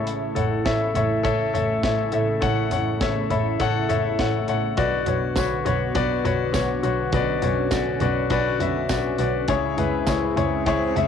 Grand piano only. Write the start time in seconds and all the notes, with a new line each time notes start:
Already playing: A2 A4 C#5 E5 A5
0.35 A4 C#5 F#5
0.65 A4 C#5 E5
0.95 A4 C#5 E5
1.23 A4 C#5 E5
1.54 A4 C#5 E5
1.84 A4 C#5 E5
2.12 A2 A4 C#5 E5
2.41 A4 C#5 F#5
2.71 A4 C#5 F#5
3.01 A4 C#5 E5
3.30 A4 C#5 E5 B5
3.60 A4 C#5 F#5 A5
3.89 A4 C#5 E5
4.19 A4 C#5 F#5
4.48 A4 C#5 E5 F#5
4.77 B2 F#4 B4 D5
5.07 F#4 B4 C#5
5.37 F#4 B4 C#5
5.65 F#4 B4 C#5
5.95 F#4 B4 D5
6.25 F#4 B4 C#5
6.53 F#4 B4 C#5
6.83 F#4 B4 C#5
7.14 B2 F#4 B4 D5
7.42 F#4 B4 C#5
7.72 F#4 B4 D5
8.01 F#4 B4 D5
8.31 F#4 B4 D5
8.60 F#4 B4 E5
8.90 F#4 B4 D5
9.19 F#4 B4 D5
9.48 C#3 E4 G#4 C#5
9.77 E4 G#4 B4
10.07 E4 G#4 C#5
10.36 E4 G#4 C#5
10.66 E4 G#4 C#5
10.96 E4 G#4 E5